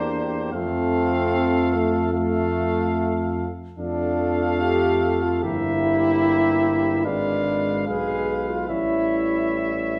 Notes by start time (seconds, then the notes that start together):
Already playing: E2 A#3 D4 G4 C5
0.52 F2 A3 C4 A4 F5
1.74 A3
2.13 A3 A4 F5
3.78 F2 A3 D4 A4 F5
4.62 G4
5.25 F4
5.43 G1 A#3 E4 G4 E5
7.05 G#1 G#3 D4 B4 F5
7.87 B1 G#3 G#4 B4 F5
8.49 F4
8.69 A1 G3 E4 C#5 E5